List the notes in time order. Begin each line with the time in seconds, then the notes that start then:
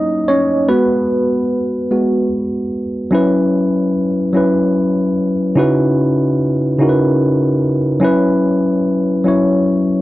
Already playing: F#3 A#3 D#4 E4 D#5
0.28 C#4 C#5
0.68 G#3 B3 F#4 B4
1.91 G#3 B3 F#4
3.11 F#3 C#4 E4 B4
4.33 F#3 C#4 E4 B4
5.55 C#3 C#4 D#4 E4 F#4 B4
6.79 C#3 C#4 D#4 E4 F#4
6.83 A#4
6.89 B4
8.00 F#3 C#4 E4
8.04 B4
9.24 F#3 C#4 E4
9.28 C#5